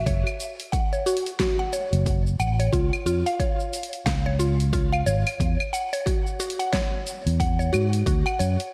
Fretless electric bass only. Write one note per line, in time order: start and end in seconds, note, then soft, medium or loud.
0.06 0.23 F#1 medium
1.93 2.36 F#1 medium
2.40 2.68 A1 medium
2.73 2.89 C#2 medium
3.06 3.22 F2 medium
4.06 5.02 C#2 medium
5.07 5.23 G#1 medium
5.40 5.56 E2 medium
7.26 7.69 E2 medium
7.74 8.02 G#2 medium
8.07 8.23 D2 medium
8.40 8.56 F#2 medium